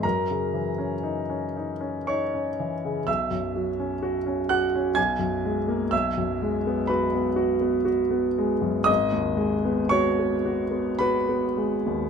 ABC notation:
X:1
M:3/4
L:1/16
Q:1/4=60
K:G#phr
V:1 name="Grand piano"
[^A^a]8 [cc']4 | [ee']6 [ff']2 [gg']4 | [ee']4 [Bb]4 z4 | [dd']4 [cc']4 [Bb]4 |]
V:2 name="Grand piano"
F,, C, E, C D C D C D C E, C, | B,,, F,, F, C F C F C B,,, F,, G, ^A, | B,,, F,, G, B, F B, F B, F B, G, F,, | G,,, D,, G, B, F B, F B, F B, G, D,, |]